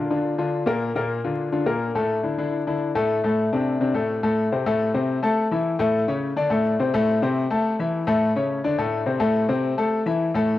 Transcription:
0.10 D3 D4 F4
0.38 D3 D4 F4
0.66 A#2 A#3 A#4
0.95 A#2 A#3 A#4
1.24 D3 D4 F4
1.52 D3 D4 F4
1.66 A#2 A#3 A#4
1.95 A2 A3 A4
2.23 D3 D4 E4
2.38 D3 D4 E4
2.67 D3 D4 E4
2.95 A2 A3 A4
3.23 A2 A3 A4
3.52 C3 C4 D4
3.80 C3 C4 D4
3.94 A2 A3 A4
4.23 A2 A3 A4
4.52 C3 C4 C5
4.66 A2 A3 A4
4.94 C3 C4 C5
5.22 A3 A4 A5
5.51 E3 E4 E5
5.79 A2 A3 A4
6.08 C#3 C#4 C#5
6.36 D3 D4 D5
6.50 A2 A3 A4
6.79 C3 C4 C5
6.94 A2 A3 A4
7.22 C3 C4 C5
7.50 A3 A4 A5
7.79 E3 E4 E5
8.07 A2 A3 A4
8.36 C#3 C#4 C#5
8.64 D3 D4 D5
8.78 A2 A3 A4
9.06 C3 C4 C5
9.20 A2 A3 A4
9.49 C3 C4 C5
9.78 A3 A4 A5
10.06 E3 E4 E5
10.34 A2 A3 A4

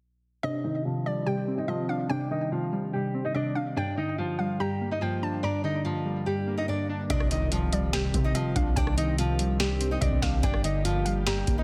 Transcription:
0.43 C3 D4 D5 D#5
0.64 D#3 D#4 D#5
0.85 C3 F3 F4
1.06 G3 D5
1.26 C3 G3 G4 G5
1.48 C4
1.57 D#4 D#5
1.68 C3 F3 F4 D#5
1.89 D4 F5
2.10 C3 D4 D5 G5
2.31 D#3 D#4 D#5
2.52 C3 F3 F4
2.72 G3
2.93 C3 G3 G4
3.14 C4
3.25 D#4 D#5
3.35 C3 D4 D5 D#5
3.55 D4 F5
3.76 G2 D4 D5 G5
3.97 D3 D#4 D#5
4.18 G2 F3 F4
4.39 G3 F5
4.60 G2 G3 G4 A#5
4.81 A#3
4.91 D#4 D#5
5.01 G2 F3 F4 G5
5.22 D4 A5
5.43 G2 D4 D5 A#5
5.64 D3 D#4 D#5
5.85 G2 F3 F4
6.05 G3
6.26 G2 G3 G4
6.47 A#3
6.58 D#4 D#5
6.68 G2 D4 D5
6.89 D4
7.10 C2 C3 D#3 C4 D4 G4 D5 D#5, kick, closed hi-hat, impact
7.20 cross-stick
7.31 D#3 D#4 D#5, closed hi-hat
7.52 C3 F3 F4, closed hi-hat
7.73 G3 D5, closed hi-hat
7.93 C3 G3 G4 G5, snare, closed hi-hat
8.14 C3 C4, kick, closed hi-hat
8.24 D#4 D#5
8.35 C3 F3 F4 D#5, closed hi-hat
8.56 C2 D4 F5, kick, closed hi-hat
8.76 C2 C3 D4 D5 G5, kick, closed hi-hat
8.87 cross-stick
8.97 D#3 D#4 D#5, closed hi-hat
9.18 C3 F3 F4, closed hi-hat
9.39 G3, closed hi-hat
9.60 C3 G3 G4, snare, closed hi-hat
9.81 C4, closed hi-hat
9.91 D#4 D#5
10.01 C2 C3 D4 D5 D#5, kick, closed hi-hat
10.12 C2, kick
10.22 C2 D4 F5, kick, snare, closed hi-hat
10.43 G1 G2 D3 G3 A#3 D4 D5 G5, kick, closed hi-hat
10.54 cross-stick
10.64 D3 D#4 D#5, closed hi-hat
10.85 G2 F3 F4, closed hi-hat
11.05 G3 F5, closed hi-hat
11.26 G2 G3 G4 A#5, snare, closed hi-hat
11.47 G1 A#3, kick, closed hi-hat
11.58 D#4 D#5

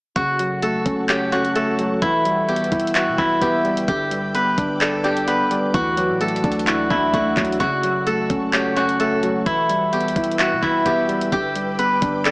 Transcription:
0.16 F#1 C#3 F#4 A4 F#5 C#6, kick, closed hi-hat
0.39 F#3, closed hi-hat
0.62 A3 A4, closed hi-hat
0.86 F#1 C#4, kick, closed hi-hat
1.09 G4 C#5, clap, closed hi-hat
1.32 C#4 F#4, closed hi-hat
1.45 closed hi-hat
1.55 A3 A4, closed hi-hat
1.79 F#3, closed hi-hat
2.02 E1 E3 E4 B4 G5 E6, kick, closed hi-hat
2.25 G3, closed hi-hat
2.48 B3 G4, closed hi-hat
2.56 closed hi-hat
2.64 closed hi-hat
2.72 E1 E4, kick, closed hi-hat
2.80 closed hi-hat
2.87 closed hi-hat
2.95 F#4 E5, clap, closed hi-hat
3.07 B2
3.18 E1 E4, kick
3.41 E1 B3 G4, kick, closed hi-hat
3.64 G3, closed hi-hat
3.77 closed hi-hat
3.88 G1 D3 G4 B4 D6, kick, closed hi-hat
4.11 G3, closed hi-hat
4.35 B3 B4, closed hi-hat
4.58 G1 D4, kick, closed hi-hat
4.81 A4 D5, clap, closed hi-hat
5.04 D4 G4, closed hi-hat
5.17 closed hi-hat
5.27 B3 B4, closed hi-hat
5.40 F#1
5.50 G3, closed hi-hat
5.74 D2 E3 F#4 D5 F#5 E6, kick, closed hi-hat
5.97 F#3, closed hi-hat
6.10 A2
6.20 A3 A4, closed hi-hat
6.28 closed hi-hat
6.36 closed hi-hat
6.44 D2 D4, kick, closed hi-hat
6.52 closed hi-hat
6.59 closed hi-hat
6.67 E4 F#4, clap, closed hi-hat
6.90 D2 D4 E4, kick
7.14 D2 A3 F#4, kick, closed hi-hat
7.36 D2 F#3, kick, clap, closed hi-hat
7.45 closed hi-hat
7.52 closed hi-hat
7.60 F#1 C#3 F#4 A4 C#6, kick, closed hi-hat
7.83 F#3, closed hi-hat
8.07 A3 A4, closed hi-hat
8.30 F#1 C#4, kick, closed hi-hat
8.53 G4 C#5, clap, closed hi-hat
8.77 C#4 F#4, closed hi-hat
8.89 closed hi-hat
9.00 A3 A4, closed hi-hat
9.23 F#3, closed hi-hat
9.46 E1 E3 E4 B4 G5 E6, kick, closed hi-hat
9.69 G3, closed hi-hat
9.93 B3 G4, closed hi-hat
10.01 closed hi-hat
10.08 closed hi-hat
10.16 E1 E4, kick, closed hi-hat
10.24 closed hi-hat
10.32 closed hi-hat
10.39 F#4 E5, clap, closed hi-hat
10.52 B2
10.62 E1 E4, kick
10.86 E1 B3 G4, kick, closed hi-hat
11.08 G3, closed hi-hat
11.21 closed hi-hat
11.32 G1 D3 G4 B4 D6, kick, closed hi-hat
11.55 G3, closed hi-hat
11.79 B3 B4, closed hi-hat
12.02 G1 D4, kick, closed hi-hat
12.25 A4 D5, clap, closed hi-hat

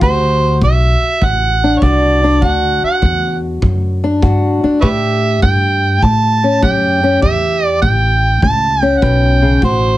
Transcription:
0.01 D2 F#4 C5, kick
0.61 B1 D2 E5, kick
1.02 muted upright bass stroke
1.22 A1 D2 F#5, kick
1.64 D4
1.78 C#5
1.82 C2 D2 F#4 D5, kick
2.24 D4
2.42 D2 F#4 F#5, kick
2.83 F#5, muted upright bass stroke
3.02 D2 E2, kick
3.62 D2 F#2, kick
4.04 D4
4.22 D2 G2 F#4, kick
4.63 D4, muted upright bass stroke
4.81 A2 G4 B4 C#5 E5, kick
5.42 G2 A2 G5, kick
6.02 A2 A5, kick
6.44 C#4
6.63 F#2 A2 G4 G5, kick
7.03 C#4
7.21 E2 A2 G4 E5, kick
7.65 D5
7.82 A1 A2 G5, kick
8.42 C#2 A2 A5, kick
8.82 C#4 G5
8.98 B2 F#5
9.02 B1 G5, kick
9.42 C#3
9.62 A1 D2 F#4 C5, kick

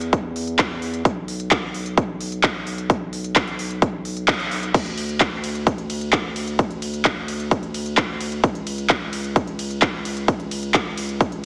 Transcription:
Already playing: E2
0.01 closed hi-hat
0.13 kick, closed hi-hat
0.36 open hi-hat
0.47 closed hi-hat
0.59 kick, clap, closed hi-hat
0.82 open hi-hat
0.94 closed hi-hat
1.05 B1, kick, closed hi-hat
1.28 open hi-hat
1.40 closed hi-hat
1.51 kick, clap, closed hi-hat
1.74 open hi-hat
1.86 closed hi-hat
1.98 kick, closed hi-hat
2.21 open hi-hat
2.32 closed hi-hat
2.43 kick, clap, closed hi-hat
2.67 open hi-hat
2.78 closed hi-hat
2.90 kick, closed hi-hat
3.13 open hi-hat
3.24 closed hi-hat
3.36 kick, clap, closed hi-hat
3.47 closed hi-hat
3.59 open hi-hat
3.71 closed hi-hat
3.82 kick, closed hi-hat
4.05 open hi-hat
4.17 closed hi-hat
4.28 kick, clap, closed hi-hat
4.40 closed hi-hat
4.51 open hi-hat
4.63 closed hi-hat
4.74 D2, kick, closed hi-hat, ride, crash
4.86 closed hi-hat
4.98 open hi-hat, ride
5.09 closed hi-hat
5.20 kick, clap, closed hi-hat
5.44 open hi-hat, ride
5.55 closed hi-hat
5.67 kick, closed hi-hat, ride
5.78 closed hi-hat
5.90 open hi-hat, ride
6.01 closed hi-hat
6.13 kick, clap, closed hi-hat
6.36 open hi-hat, ride
6.47 closed hi-hat
6.59 kick, closed hi-hat, ride
6.71 closed hi-hat
6.82 open hi-hat, ride
6.94 closed hi-hat
7.05 kick, clap, closed hi-hat, ride
7.28 open hi-hat, ride
7.40 closed hi-hat
7.51 kick, closed hi-hat, ride
7.63 closed hi-hat
7.74 open hi-hat, ride
7.86 closed hi-hat
7.97 kick, clap, closed hi-hat, ride
8.21 open hi-hat, ride
8.32 closed hi-hat
8.44 C#2, kick, closed hi-hat, ride
8.55 closed hi-hat
8.67 open hi-hat, ride
8.78 closed hi-hat
8.90 kick, clap, closed hi-hat
9.13 open hi-hat, ride
9.24 closed hi-hat
9.36 kick, closed hi-hat, ride
9.47 closed hi-hat
9.59 open hi-hat, ride
9.71 closed hi-hat
9.82 kick, clap, closed hi-hat
10.05 open hi-hat, ride
10.17 closed hi-hat
10.28 kick, closed hi-hat, ride
10.40 closed hi-hat
10.51 open hi-hat, ride
10.63 closed hi-hat
10.74 kick, clap, closed hi-hat, ride
10.97 open hi-hat, ride
11.09 closed hi-hat
11.21 kick, closed hi-hat, ride
11.32 closed hi-hat

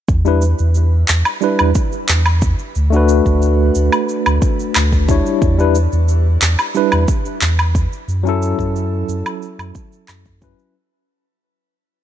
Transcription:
0.08 E2, kick, cabasa
0.25 G3 D4 E4 B4, cabasa
0.42 cabasa
0.59 E2, cabasa
0.75 cabasa
1.08 E2, clap, cabasa
1.25 cabasa, low woodblock
1.41 G3 D4 E4 B4, cabasa
1.59 E2, cabasa, low woodblock
1.75 kick, cabasa
1.92 cabasa
2.09 E2, clap, cabasa
2.26 cabasa, low woodblock
2.42 kick, cabasa
2.59 cabasa
2.75 D2, cabasa
2.90 A3 D4 F#4, cabasa
2.96 B4
3.09 cabasa
3.26 D2, kick, cabasa
3.42 cabasa
3.75 D2, cabasa
3.92 cabasa, low woodblock
4.09 cabasa
4.26 D2, cabasa, low woodblock
4.42 kick, cabasa
4.60 cabasa
4.75 D2, clap, cabasa, low woodblock
4.92 kick, cabasa
5.08 G3 D4 E4 C#5, kick, cabasa
5.26 cabasa
5.42 E2, kick, cabasa
5.58 G3 D4 E4 B4, cabasa
5.75 cabasa
5.92 E2, cabasa
6.08 cabasa
6.42 E2, clap, cabasa
6.59 cabasa, low woodblock
6.74 G3 D4 E4 B4, cabasa
6.92 E2, cabasa, low woodblock
7.08 kick, cabasa
7.25 cabasa
7.41 E2, clap, cabasa
7.59 cabasa, low woodblock
7.75 kick, cabasa
7.93 cabasa
8.08 F#2, cabasa
8.23 F#3 C#4 E4, cabasa
8.29 A4
8.42 cabasa
8.59 F#2, kick, cabasa
8.76 cabasa
9.08 F#2, cabasa
9.26 cabasa, low woodblock
9.42 cabasa
9.59 F#2, cabasa, low woodblock
9.75 kick, cabasa
9.92 cabasa
10.08 F#2, clap, cabasa, low woodblock
10.26 kick, cabasa
10.41 F#3 C#4 E4 B4, kick, cabasa
10.59 cabasa

